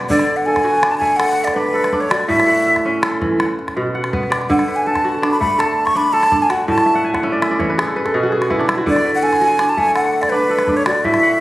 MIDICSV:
0, 0, Header, 1, 4, 480
1, 0, Start_track
1, 0, Tempo, 365186
1, 135, Time_signature, 12, 3, 24, 8
1, 14988, End_track
2, 0, Start_track
2, 0, Title_t, "Flute"
2, 0, Program_c, 0, 73
2, 126, Note_on_c, 0, 74, 98
2, 480, Note_on_c, 0, 78, 88
2, 499, Note_off_c, 0, 74, 0
2, 603, Note_on_c, 0, 80, 92
2, 622, Note_off_c, 0, 78, 0
2, 1196, Note_on_c, 0, 81, 86
2, 1216, Note_off_c, 0, 80, 0
2, 1276, Note_off_c, 0, 81, 0
2, 1284, Note_on_c, 0, 80, 96
2, 1530, Note_on_c, 0, 78, 98
2, 1550, Note_off_c, 0, 80, 0
2, 1897, Note_on_c, 0, 74, 80
2, 1917, Note_off_c, 0, 78, 0
2, 2021, Note_on_c, 0, 71, 90
2, 2041, Note_off_c, 0, 74, 0
2, 2634, Note_on_c, 0, 73, 68
2, 2654, Note_off_c, 0, 71, 0
2, 2772, Note_on_c, 0, 74, 74
2, 2792, Note_off_c, 0, 73, 0
2, 2979, Note_off_c, 0, 74, 0
2, 2987, Note_on_c, 0, 76, 89
2, 3911, Note_off_c, 0, 76, 0
2, 5917, Note_on_c, 0, 78, 80
2, 6255, Note_on_c, 0, 80, 73
2, 6275, Note_off_c, 0, 78, 0
2, 6395, Note_on_c, 0, 81, 73
2, 6415, Note_off_c, 0, 80, 0
2, 6973, Note_off_c, 0, 81, 0
2, 6981, Note_on_c, 0, 83, 81
2, 7092, Note_off_c, 0, 83, 0
2, 7100, Note_on_c, 0, 83, 89
2, 7351, Note_on_c, 0, 81, 84
2, 7371, Note_off_c, 0, 83, 0
2, 7695, Note_on_c, 0, 85, 90
2, 7715, Note_off_c, 0, 81, 0
2, 7843, Note_on_c, 0, 83, 88
2, 7863, Note_off_c, 0, 85, 0
2, 8056, Note_on_c, 0, 81, 100
2, 8075, Note_off_c, 0, 83, 0
2, 8438, Note_on_c, 0, 80, 81
2, 8458, Note_off_c, 0, 81, 0
2, 8551, Note_on_c, 0, 78, 73
2, 8571, Note_off_c, 0, 80, 0
2, 8780, Note_off_c, 0, 78, 0
2, 8788, Note_on_c, 0, 81, 79
2, 9286, Note_off_c, 0, 81, 0
2, 11685, Note_on_c, 0, 74, 106
2, 12007, Note_off_c, 0, 74, 0
2, 12026, Note_on_c, 0, 78, 88
2, 12131, Note_on_c, 0, 80, 97
2, 12150, Note_off_c, 0, 78, 0
2, 12739, Note_on_c, 0, 81, 85
2, 12758, Note_off_c, 0, 80, 0
2, 12861, Note_on_c, 0, 80, 99
2, 12881, Note_off_c, 0, 81, 0
2, 13072, Note_off_c, 0, 80, 0
2, 13079, Note_on_c, 0, 78, 86
2, 13428, Note_on_c, 0, 74, 90
2, 13448, Note_off_c, 0, 78, 0
2, 13541, Note_on_c, 0, 71, 94
2, 13561, Note_off_c, 0, 74, 0
2, 14151, Note_on_c, 0, 73, 83
2, 14171, Note_off_c, 0, 71, 0
2, 14273, Note_off_c, 0, 73, 0
2, 14281, Note_on_c, 0, 74, 82
2, 14515, Note_on_c, 0, 76, 95
2, 14535, Note_off_c, 0, 74, 0
2, 14988, Note_off_c, 0, 76, 0
2, 14988, End_track
3, 0, Start_track
3, 0, Title_t, "Kora"
3, 0, Program_c, 1, 46
3, 0, Note_on_c, 1, 47, 75
3, 0, Note_on_c, 1, 59, 74
3, 0, Note_on_c, 1, 74, 59
3, 0, Note_on_c, 1, 78, 64
3, 136, Note_on_c, 1, 50, 90
3, 201, Note_off_c, 1, 47, 0
3, 622, Note_on_c, 1, 69, 63
3, 664, Note_off_c, 1, 78, 0
3, 845, Note_on_c, 1, 66, 70
3, 1091, Note_on_c, 1, 62, 60
3, 1329, Note_on_c, 1, 57, 72
3, 1344, Note_off_c, 1, 74, 0
3, 1561, Note_off_c, 1, 69, 0
3, 1566, Note_on_c, 1, 69, 58
3, 2043, Note_off_c, 1, 62, 0
3, 2049, Note_on_c, 1, 62, 72
3, 2092, Note_off_c, 1, 59, 0
3, 2280, Note_off_c, 1, 69, 0
3, 2285, Note_on_c, 1, 69, 68
3, 2526, Note_off_c, 1, 62, 0
3, 2531, Note_on_c, 1, 62, 72
3, 2767, Note_off_c, 1, 66, 0
3, 2774, Note_on_c, 1, 66, 65
3, 3003, Note_on_c, 1, 45, 92
3, 3084, Note_off_c, 1, 50, 0
3, 3252, Note_on_c, 1, 78, 60
3, 3507, Note_on_c, 1, 76, 64
3, 3748, Note_on_c, 1, 61, 67
3, 3827, Note_off_c, 1, 62, 0
3, 3954, Note_off_c, 1, 57, 0
3, 3977, Note_off_c, 1, 69, 0
3, 3983, Note_on_c, 1, 69, 68
3, 4223, Note_on_c, 1, 52, 70
3, 4459, Note_off_c, 1, 78, 0
3, 4465, Note_on_c, 1, 78, 60
3, 4525, Note_off_c, 1, 45, 0
3, 4525, Note_off_c, 1, 52, 0
3, 4696, Note_off_c, 1, 66, 0
3, 4866, Note_off_c, 1, 76, 0
3, 4949, Note_on_c, 1, 47, 67
3, 5184, Note_off_c, 1, 78, 0
3, 5189, Note_on_c, 1, 78, 55
3, 5428, Note_on_c, 1, 59, 65
3, 5656, Note_on_c, 1, 74, 58
3, 5715, Note_off_c, 1, 69, 0
3, 5735, Note_off_c, 1, 61, 0
3, 5910, Note_on_c, 1, 50, 84
3, 5966, Note_off_c, 1, 47, 0
3, 6152, Note_on_c, 1, 71, 58
3, 6395, Note_on_c, 1, 69, 58
3, 6457, Note_off_c, 1, 78, 0
3, 6630, Note_on_c, 1, 66, 66
3, 6865, Note_on_c, 1, 62, 67
3, 7103, Note_on_c, 1, 57, 66
3, 7112, Note_off_c, 1, 74, 0
3, 7337, Note_off_c, 1, 69, 0
3, 7342, Note_on_c, 1, 69, 62
3, 7768, Note_off_c, 1, 71, 0
3, 7820, Note_off_c, 1, 62, 0
3, 7825, Note_on_c, 1, 62, 70
3, 7877, Note_off_c, 1, 59, 0
3, 8053, Note_off_c, 1, 69, 0
3, 8059, Note_on_c, 1, 69, 67
3, 8297, Note_off_c, 1, 62, 0
3, 8302, Note_on_c, 1, 62, 65
3, 8537, Note_off_c, 1, 66, 0
3, 8543, Note_on_c, 1, 66, 66
3, 8781, Note_on_c, 1, 45, 86
3, 8846, Note_off_c, 1, 50, 0
3, 9012, Note_on_c, 1, 76, 69
3, 9138, Note_on_c, 1, 78, 74
3, 9255, Note_on_c, 1, 80, 66
3, 9334, Note_off_c, 1, 57, 0
3, 9334, Note_off_c, 1, 69, 0
3, 9377, Note_off_c, 1, 78, 0
3, 9382, Note_on_c, 1, 78, 70
3, 9500, Note_off_c, 1, 76, 0
3, 9504, Note_on_c, 1, 61, 70
3, 9505, Note_on_c, 1, 76, 61
3, 9583, Note_off_c, 1, 62, 0
3, 9622, Note_on_c, 1, 74, 69
3, 9742, Note_off_c, 1, 76, 0
3, 9747, Note_on_c, 1, 76, 72
3, 9861, Note_off_c, 1, 74, 0
3, 9866, Note_on_c, 1, 74, 68
3, 9978, Note_on_c, 1, 73, 65
3, 9979, Note_on_c, 1, 52, 65
3, 10113, Note_on_c, 1, 71, 62
3, 10225, Note_on_c, 1, 68, 66
3, 10285, Note_off_c, 1, 45, 0
3, 10285, Note_off_c, 1, 52, 0
3, 10344, Note_on_c, 1, 69, 66
3, 10423, Note_off_c, 1, 80, 0
3, 10457, Note_off_c, 1, 71, 0
3, 10463, Note_on_c, 1, 71, 75
3, 10464, Note_off_c, 1, 66, 0
3, 10580, Note_off_c, 1, 69, 0
3, 10585, Note_on_c, 1, 69, 59
3, 10650, Note_off_c, 1, 78, 0
3, 10664, Note_off_c, 1, 68, 0
3, 10700, Note_on_c, 1, 47, 77
3, 10703, Note_on_c, 1, 68, 67
3, 10820, Note_on_c, 1, 66, 68
3, 10929, Note_off_c, 1, 68, 0
3, 10934, Note_on_c, 1, 68, 60
3, 11013, Note_off_c, 1, 69, 0
3, 11046, Note_off_c, 1, 66, 0
3, 11051, Note_on_c, 1, 66, 59
3, 11106, Note_off_c, 1, 76, 0
3, 11174, Note_on_c, 1, 59, 69
3, 11176, Note_on_c, 1, 64, 66
3, 11291, Note_on_c, 1, 62, 75
3, 11322, Note_off_c, 1, 74, 0
3, 11370, Note_off_c, 1, 61, 0
3, 11370, Note_off_c, 1, 73, 0
3, 11406, Note_off_c, 1, 64, 0
3, 11411, Note_on_c, 1, 64, 69
3, 11528, Note_off_c, 1, 66, 0
3, 11533, Note_on_c, 1, 66, 69
3, 11647, Note_on_c, 1, 50, 87
3, 11724, Note_off_c, 1, 47, 0
3, 11893, Note_off_c, 1, 71, 0
3, 11899, Note_on_c, 1, 71, 66
3, 12128, Note_on_c, 1, 69, 64
3, 12207, Note_off_c, 1, 68, 0
3, 12365, Note_off_c, 1, 66, 0
3, 12371, Note_on_c, 1, 66, 73
3, 12604, Note_off_c, 1, 62, 0
3, 12609, Note_on_c, 1, 62, 64
3, 12845, Note_on_c, 1, 57, 70
3, 13074, Note_off_c, 1, 69, 0
3, 13080, Note_on_c, 1, 69, 58
3, 13471, Note_off_c, 1, 64, 0
3, 13515, Note_off_c, 1, 71, 0
3, 13556, Note_off_c, 1, 62, 0
3, 13561, Note_on_c, 1, 62, 71
3, 13624, Note_off_c, 1, 59, 0
3, 13793, Note_off_c, 1, 69, 0
3, 13798, Note_on_c, 1, 69, 58
3, 14038, Note_off_c, 1, 62, 0
3, 14043, Note_on_c, 1, 62, 66
3, 14277, Note_off_c, 1, 66, 0
3, 14282, Note_on_c, 1, 66, 64
3, 14524, Note_on_c, 1, 45, 82
3, 14598, Note_off_c, 1, 50, 0
3, 14760, Note_on_c, 1, 78, 68
3, 14988, Note_off_c, 1, 45, 0
3, 14988, Note_off_c, 1, 57, 0
3, 14988, Note_off_c, 1, 62, 0
3, 14988, Note_off_c, 1, 66, 0
3, 14988, Note_off_c, 1, 69, 0
3, 14988, Note_off_c, 1, 78, 0
3, 14988, End_track
4, 0, Start_track
4, 0, Title_t, "Calabash"
4, 131, Note_on_c, 9, 36, 67
4, 254, Note_on_c, 9, 38, 56
4, 262, Note_off_c, 9, 36, 0
4, 386, Note_off_c, 9, 38, 0
4, 737, Note_on_c, 9, 36, 49
4, 737, Note_on_c, 9, 38, 51
4, 857, Note_off_c, 9, 38, 0
4, 857, Note_on_c, 9, 38, 18
4, 869, Note_off_c, 9, 36, 0
4, 970, Note_off_c, 9, 38, 0
4, 970, Note_on_c, 9, 38, 20
4, 1091, Note_off_c, 9, 38, 0
4, 1091, Note_on_c, 9, 38, 69
4, 1222, Note_off_c, 9, 38, 0
4, 1333, Note_on_c, 9, 36, 69
4, 1464, Note_off_c, 9, 36, 0
4, 1572, Note_on_c, 9, 38, 74
4, 1703, Note_off_c, 9, 38, 0
4, 1939, Note_on_c, 9, 36, 49
4, 1939, Note_on_c, 9, 38, 52
4, 2070, Note_off_c, 9, 36, 0
4, 2070, Note_off_c, 9, 38, 0
4, 2175, Note_on_c, 9, 38, 22
4, 2307, Note_off_c, 9, 38, 0
4, 2308, Note_on_c, 9, 38, 20
4, 2423, Note_off_c, 9, 38, 0
4, 2423, Note_on_c, 9, 38, 50
4, 2530, Note_off_c, 9, 38, 0
4, 2530, Note_on_c, 9, 36, 59
4, 2530, Note_on_c, 9, 38, 21
4, 2658, Note_off_c, 9, 38, 0
4, 2658, Note_on_c, 9, 38, 21
4, 2662, Note_off_c, 9, 36, 0
4, 2776, Note_off_c, 9, 38, 0
4, 2776, Note_on_c, 9, 38, 68
4, 2907, Note_off_c, 9, 38, 0
4, 3022, Note_on_c, 9, 36, 71
4, 3151, Note_on_c, 9, 38, 53
4, 3153, Note_off_c, 9, 36, 0
4, 3269, Note_off_c, 9, 38, 0
4, 3269, Note_on_c, 9, 38, 20
4, 3400, Note_off_c, 9, 38, 0
4, 3630, Note_on_c, 9, 36, 48
4, 3630, Note_on_c, 9, 38, 43
4, 3761, Note_off_c, 9, 36, 0
4, 3761, Note_off_c, 9, 38, 0
4, 3981, Note_on_c, 9, 38, 71
4, 4104, Note_off_c, 9, 38, 0
4, 4104, Note_on_c, 9, 38, 22
4, 4227, Note_off_c, 9, 38, 0
4, 4227, Note_on_c, 9, 36, 73
4, 4227, Note_on_c, 9, 38, 22
4, 4359, Note_off_c, 9, 36, 0
4, 4359, Note_off_c, 9, 38, 0
4, 4468, Note_on_c, 9, 38, 67
4, 4600, Note_off_c, 9, 38, 0
4, 4718, Note_on_c, 9, 38, 23
4, 4837, Note_off_c, 9, 38, 0
4, 4837, Note_on_c, 9, 36, 47
4, 4837, Note_on_c, 9, 38, 50
4, 4954, Note_off_c, 9, 38, 0
4, 4954, Note_on_c, 9, 38, 22
4, 4968, Note_off_c, 9, 36, 0
4, 5085, Note_off_c, 9, 38, 0
4, 5193, Note_on_c, 9, 38, 19
4, 5310, Note_off_c, 9, 38, 0
4, 5310, Note_on_c, 9, 38, 51
4, 5433, Note_off_c, 9, 38, 0
4, 5433, Note_on_c, 9, 36, 69
4, 5433, Note_on_c, 9, 38, 22
4, 5563, Note_off_c, 9, 38, 0
4, 5563, Note_on_c, 9, 38, 20
4, 5564, Note_off_c, 9, 36, 0
4, 5677, Note_off_c, 9, 38, 0
4, 5677, Note_on_c, 9, 38, 67
4, 5803, Note_off_c, 9, 38, 0
4, 5803, Note_on_c, 9, 38, 20
4, 5919, Note_on_c, 9, 36, 69
4, 5935, Note_off_c, 9, 38, 0
4, 6034, Note_on_c, 9, 38, 50
4, 6050, Note_off_c, 9, 36, 0
4, 6166, Note_off_c, 9, 38, 0
4, 6513, Note_on_c, 9, 36, 49
4, 6513, Note_on_c, 9, 38, 49
4, 6640, Note_off_c, 9, 38, 0
4, 6640, Note_on_c, 9, 38, 19
4, 6645, Note_off_c, 9, 36, 0
4, 6764, Note_off_c, 9, 38, 0
4, 6764, Note_on_c, 9, 38, 19
4, 6879, Note_off_c, 9, 38, 0
4, 6879, Note_on_c, 9, 38, 63
4, 7011, Note_off_c, 9, 38, 0
4, 7121, Note_on_c, 9, 36, 61
4, 7253, Note_off_c, 9, 36, 0
4, 7362, Note_on_c, 9, 38, 62
4, 7494, Note_off_c, 9, 38, 0
4, 7608, Note_on_c, 9, 38, 20
4, 7714, Note_off_c, 9, 38, 0
4, 7714, Note_on_c, 9, 36, 52
4, 7714, Note_on_c, 9, 38, 48
4, 7846, Note_off_c, 9, 36, 0
4, 7846, Note_off_c, 9, 38, 0
4, 7956, Note_on_c, 9, 38, 20
4, 8080, Note_off_c, 9, 38, 0
4, 8080, Note_on_c, 9, 38, 18
4, 8190, Note_off_c, 9, 38, 0
4, 8190, Note_on_c, 9, 38, 48
4, 8307, Note_off_c, 9, 38, 0
4, 8307, Note_on_c, 9, 36, 61
4, 8307, Note_on_c, 9, 38, 20
4, 8438, Note_off_c, 9, 36, 0
4, 8438, Note_off_c, 9, 38, 0
4, 8544, Note_on_c, 9, 38, 62
4, 8675, Note_off_c, 9, 38, 0
4, 8786, Note_on_c, 9, 36, 54
4, 8908, Note_on_c, 9, 38, 50
4, 8918, Note_off_c, 9, 36, 0
4, 9039, Note_off_c, 9, 38, 0
4, 9392, Note_on_c, 9, 36, 49
4, 9392, Note_on_c, 9, 38, 47
4, 9514, Note_off_c, 9, 38, 0
4, 9514, Note_on_c, 9, 38, 20
4, 9524, Note_off_c, 9, 36, 0
4, 9639, Note_off_c, 9, 38, 0
4, 9639, Note_on_c, 9, 38, 19
4, 9758, Note_off_c, 9, 38, 0
4, 9758, Note_on_c, 9, 38, 63
4, 9889, Note_off_c, 9, 38, 0
4, 9990, Note_on_c, 9, 36, 63
4, 10122, Note_off_c, 9, 36, 0
4, 10240, Note_on_c, 9, 38, 69
4, 10371, Note_off_c, 9, 38, 0
4, 10471, Note_on_c, 9, 38, 20
4, 10590, Note_off_c, 9, 38, 0
4, 10590, Note_on_c, 9, 36, 45
4, 10590, Note_on_c, 9, 38, 46
4, 10721, Note_off_c, 9, 36, 0
4, 10721, Note_off_c, 9, 38, 0
4, 10940, Note_on_c, 9, 38, 17
4, 11065, Note_off_c, 9, 38, 0
4, 11065, Note_on_c, 9, 38, 51
4, 11181, Note_off_c, 9, 38, 0
4, 11181, Note_on_c, 9, 36, 57
4, 11181, Note_on_c, 9, 38, 18
4, 11312, Note_off_c, 9, 36, 0
4, 11312, Note_off_c, 9, 38, 0
4, 11312, Note_on_c, 9, 38, 20
4, 11422, Note_off_c, 9, 38, 0
4, 11422, Note_on_c, 9, 38, 66
4, 11553, Note_off_c, 9, 38, 0
4, 11659, Note_on_c, 9, 36, 67
4, 11782, Note_on_c, 9, 38, 45
4, 11790, Note_off_c, 9, 36, 0
4, 11914, Note_off_c, 9, 38, 0
4, 12258, Note_on_c, 9, 36, 50
4, 12258, Note_on_c, 9, 38, 44
4, 12371, Note_off_c, 9, 38, 0
4, 12371, Note_on_c, 9, 38, 19
4, 12390, Note_off_c, 9, 36, 0
4, 12488, Note_off_c, 9, 38, 0
4, 12488, Note_on_c, 9, 38, 20
4, 12607, Note_off_c, 9, 38, 0
4, 12607, Note_on_c, 9, 38, 64
4, 12739, Note_off_c, 9, 38, 0
4, 12847, Note_on_c, 9, 36, 65
4, 12978, Note_off_c, 9, 36, 0
4, 13086, Note_on_c, 9, 38, 58
4, 13217, Note_off_c, 9, 38, 0
4, 13323, Note_on_c, 9, 38, 19
4, 13444, Note_off_c, 9, 38, 0
4, 13444, Note_on_c, 9, 36, 46
4, 13444, Note_on_c, 9, 38, 49
4, 13576, Note_off_c, 9, 36, 0
4, 13576, Note_off_c, 9, 38, 0
4, 13679, Note_on_c, 9, 38, 20
4, 13796, Note_off_c, 9, 38, 0
4, 13796, Note_on_c, 9, 38, 16
4, 13914, Note_off_c, 9, 38, 0
4, 13914, Note_on_c, 9, 38, 47
4, 14032, Note_off_c, 9, 38, 0
4, 14032, Note_on_c, 9, 36, 56
4, 14032, Note_on_c, 9, 38, 19
4, 14161, Note_off_c, 9, 38, 0
4, 14161, Note_on_c, 9, 38, 18
4, 14163, Note_off_c, 9, 36, 0
4, 14275, Note_off_c, 9, 38, 0
4, 14275, Note_on_c, 9, 38, 62
4, 14406, Note_off_c, 9, 38, 0
4, 14516, Note_on_c, 9, 36, 52
4, 14639, Note_on_c, 9, 38, 45
4, 14647, Note_off_c, 9, 36, 0
4, 14771, Note_off_c, 9, 38, 0
4, 14988, End_track
0, 0, End_of_file